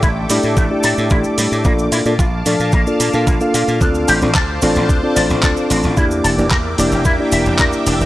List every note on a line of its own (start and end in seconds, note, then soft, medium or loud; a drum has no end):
0.00 0.25 A1 medium
0.00 0.07 E4 medium
0.00 1.63 A4 medium
0.00 1.61 E5 medium
0.00 1.61 G5 medium
0.00 3.77 D6 medium
0.00 kick loud
0.00 cabasa soft
0.30 0.41 A2 medium
0.30 0.37 G3 medium
0.30 0.67 A3 medium
0.30 0.67 D4 medium
0.30 0.68 E4 medium
0.30 0.68 G4 medium
0.30 0.68 D5 medium
0.30 open hi-hat loud
0.30 cabasa loud
0.43 0.55 A2 medium
0.43 cabasa soft
0.57 0.68 A1 medium
0.57 0.64 A3 medium
0.57 kick loud
0.57 cabasa medium
0.70 1.08 A3 medium
0.70 1.08 D4 medium
0.70 1.08 E4 medium
0.70 1.08 G4 medium
0.70 1.08 D5 medium
0.83 0.95 A2 medium
0.83 0.88 A4 medium
0.83 open hi-hat loud
0.83 cabasa medium
0.98 1.09 A2 medium
0.98 cabasa soft
1.10 1.22 A1 medium
1.10 1.62 A3 medium
1.10 1.62 D4 medium
1.10 1.15 E4 medium
1.10 1.62 E4 medium
1.10 1.62 G4 medium
1.10 1.62 D5 medium
1.10 kick loud
1.10 cabasa soft
1.24 cabasa soft
1.38 1.49 A2 medium
1.38 1.45 G3 medium
1.38 open hi-hat loud
1.38 cabasa medium
1.52 1.63 A2 medium
1.52 cabasa soft
1.64 1.87 A#1 loud
1.64 2.02 A#3 medium
1.64 1.72 A#3 medium
1.64 2.02 D4 medium
1.64 2.03 F4 medium
1.64 2.03 A4 medium
1.64 2.03 D5 loud
1.64 5.94 F5 medium
1.64 3.79 A5 medium
1.64 kick loud
1.64 cabasa medium
1.79 cabasa soft
1.92 2.03 A#2 medium
1.92 1.96 E4 medium
1.92 open hi-hat loud
1.92 cabasa medium
2.05 2.17 A#2 medium
2.05 2.13 A#3 medium
2.05 2.13 D4 medium
2.05 2.13 F4 medium
2.05 2.13 A4 medium
2.05 2.13 D5 medium
2.05 cabasa soft
2.19 2.41 A#1 medium
2.19 2.23 F4 medium
2.19 kick loud
2.19 cabasa soft
2.46 2.57 A#2 medium
2.46 2.84 F3 medium
2.46 2.53 A3 medium
2.46 2.84 D4 medium
2.46 2.84 A4 medium
2.46 2.84 D5 medium
2.46 open hi-hat loud
2.46 cabasa medium
2.60 2.71 A#2 medium
2.60 cabasa soft
2.72 2.84 A#1 medium
2.72 2.80 A#3 medium
2.72 kick loud
2.72 cabasa soft
2.87 3.11 A#3 medium
2.87 3.11 D4 medium
2.87 3.11 F4 medium
2.87 3.11 A4 medium
2.87 3.11 D5 medium
2.87 cabasa soft
3.00 3.12 A#2 medium
3.00 3.07 A#3 medium
3.00 open hi-hat loud
3.00 cabasa medium
3.13 3.25 A#2 medium
3.13 3.38 A#3 medium
3.13 3.38 D4 medium
3.13 3.38 F4 medium
3.13 3.38 A4 medium
3.13 3.38 F5 medium
3.13 cabasa soft
3.27 3.39 A#1 medium
3.27 3.34 A#3 medium
3.27 kick loud
3.27 cabasa medium
3.40 3.78 A#3 medium
3.40 3.78 D4 medium
3.40 3.78 F4 medium
3.40 3.78 A4 medium
3.40 3.78 F5 medium
3.40 cabasa soft
3.54 3.66 A#2 medium
3.54 3.61 F4 medium
3.54 open hi-hat loud
3.54 cabasa medium
3.68 3.79 A#2 medium
3.68 cabasa soft
3.81 4.04 D2 medium
3.81 4.19 C4 medium
3.81 3.88 D4 medium
3.81 4.19 D4 medium
3.81 4.19 F4 medium
3.81 4.19 A4 medium
3.81 5.95 C5 medium
3.81 4.19 D5 loud
3.81 5.95 A5 medium
3.81 8.06 D6 medium
3.81 kick loud
3.81 cabasa soft
3.95 cabasa soft
4.08 4.20 A1 medium
4.08 4.12 G4 medium
4.08 open hi-hat loud
4.08 cabasa medium
4.22 4.33 A1 medium
4.22 4.29 C4 medium
4.22 4.29 D4 medium
4.22 4.29 F4 medium
4.22 4.29 A4 medium
4.22 4.30 D5 medium
4.22 cabasa soft
4.35 4.58 D2 loud
4.35 4.39 A4 medium
4.35 kick loud
4.35 clap loud
4.35 cabasa soft
4.62 4.74 A1 medium
4.62 5.00 C4 medium
4.62 4.69 C4 medium
4.62 5.00 D4 medium
4.62 5.00 F4 medium
4.62 5.00 A4 medium
4.62 5.00 D5 medium
4.62 open hi-hat medium
4.62 cabasa medium
4.75 4.87 A1 medium
4.75 cabasa soft
4.89 5.01 D2 medium
4.89 4.96 D4 medium
4.89 kick loud
4.89 cabasa medium
5.03 5.40 C4 medium
5.03 5.40 D4 medium
5.03 5.40 F4 medium
5.03 5.41 A4 medium
5.03 5.41 D5 medium
5.16 5.28 A1 medium
5.16 5.20 D5 medium
5.16 open hi-hat loud
5.16 cabasa medium
5.30 5.41 A1 medium
5.30 cabasa soft
5.43 5.55 D2 loud
5.43 5.94 C4 medium
5.43 5.94 D4 medium
5.43 5.94 F4 medium
5.43 5.47 A4 medium
5.43 5.95 A4 medium
5.43 5.95 D5 medium
5.43 kick loud
5.43 clap loud
5.43 cabasa soft
5.57 cabasa soft
5.70 5.82 A1 medium
5.70 5.77 C4 medium
5.70 open hi-hat loud
5.70 cabasa medium
5.83 5.95 A1 medium
5.83 cabasa soft
5.97 6.20 E2 loud
5.97 6.35 A#3 medium
5.97 8.06 A#3 medium
5.97 6.35 D4 medium
5.97 6.04 E4 medium
5.97 6.35 E4 medium
5.97 6.35 G4 medium
5.97 6.35 D5 loud
5.97 8.06 E5 medium
5.97 8.06 G5 medium
5.97 kick loud
5.97 cabasa soft
6.11 cabasa soft
6.24 6.36 E1 medium
6.24 6.28 A4 medium
6.24 open hi-hat loud
6.24 cabasa medium
6.38 6.49 E1 medium
6.38 6.45 A#3 medium
6.38 6.45 D4 medium
6.38 6.45 E4 medium
6.38 6.46 G4 medium
6.38 6.46 D5 medium
6.38 cabasa soft
6.50 6.74 E2 loud
6.50 6.55 A#4 medium
6.50 kick loud
6.50 clap loud
6.50 cabasa medium
6.78 6.90 E1 medium
6.78 7.16 A#3 medium
6.78 6.85 D4 medium
6.78 7.16 D4 medium
6.78 7.16 E4 medium
6.78 7.16 G4 medium
6.78 7.16 D5 medium
6.78 open hi-hat medium
6.78 cabasa medium
6.92 7.03 E1 medium
6.92 cabasa soft
7.05 7.17 E2 medium
7.05 7.12 E4 medium
7.05 kick loud
7.05 cabasa soft
7.19 7.56 A#3 medium
7.19 7.56 D4 medium
7.19 7.57 E4 medium
7.19 7.57 G4 medium
7.19 7.57 D5 medium
7.32 7.44 E1 medium
7.32 7.37 E5 medium
7.32 open hi-hat loud
7.32 cabasa medium
7.46 7.57 E1 medium
7.46 cabasa soft
7.58 7.71 E2 loud
7.58 8.06 A#3 medium
7.58 8.06 D4 medium
7.58 8.06 E4 medium
7.58 8.06 G4 medium
7.58 7.64 A#4 medium
7.58 8.06 D5 medium
7.58 kick loud
7.58 clap loud
7.58 cabasa soft
7.73 cabasa soft
7.86 7.98 E1 medium
7.86 7.93 D4 medium
7.86 open hi-hat medium
7.86 cabasa medium
8.00 8.06 E1 medium
8.00 cabasa soft